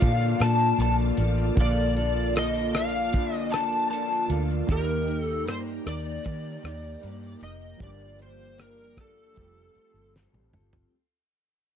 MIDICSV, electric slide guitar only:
0, 0, Header, 1, 2, 480
1, 0, Start_track
1, 0, Key_signature, -2, "major"
1, 0, Tempo, 779221
1, 970, Time_signature, 4, 2, 24, 8
1, 7242, End_track
2, 0, Start_track
2, 0, Title_t, "Electric slide guitar"
2, 0, Program_c, 0, 29
2, 0, Note_on_c, 0, 77, 103
2, 258, Note_on_c, 0, 81, 108
2, 267, Note_off_c, 0, 77, 0
2, 496, Note_off_c, 0, 81, 0
2, 503, Note_on_c, 0, 81, 97
2, 566, Note_off_c, 0, 81, 0
2, 993, Note_on_c, 0, 74, 91
2, 1437, Note_off_c, 0, 74, 0
2, 1466, Note_on_c, 0, 75, 95
2, 1700, Note_on_c, 0, 77, 106
2, 1705, Note_off_c, 0, 75, 0
2, 2057, Note_off_c, 0, 77, 0
2, 2057, Note_on_c, 0, 75, 106
2, 2168, Note_on_c, 0, 81, 108
2, 2189, Note_off_c, 0, 75, 0
2, 2399, Note_off_c, 0, 81, 0
2, 2407, Note_on_c, 0, 81, 96
2, 2631, Note_off_c, 0, 81, 0
2, 2906, Note_on_c, 0, 70, 90
2, 3214, Note_off_c, 0, 70, 0
2, 3214, Note_on_c, 0, 69, 90
2, 3353, Note_off_c, 0, 69, 0
2, 3383, Note_on_c, 0, 72, 91
2, 3446, Note_off_c, 0, 72, 0
2, 3623, Note_on_c, 0, 74, 108
2, 4577, Note_off_c, 0, 74, 0
2, 4580, Note_on_c, 0, 75, 108
2, 4798, Note_off_c, 0, 75, 0
2, 4824, Note_on_c, 0, 74, 110
2, 5063, Note_off_c, 0, 74, 0
2, 5066, Note_on_c, 0, 72, 95
2, 5281, Note_off_c, 0, 72, 0
2, 5305, Note_on_c, 0, 70, 95
2, 5544, Note_off_c, 0, 70, 0
2, 5548, Note_on_c, 0, 69, 85
2, 6233, Note_off_c, 0, 69, 0
2, 7242, End_track
0, 0, End_of_file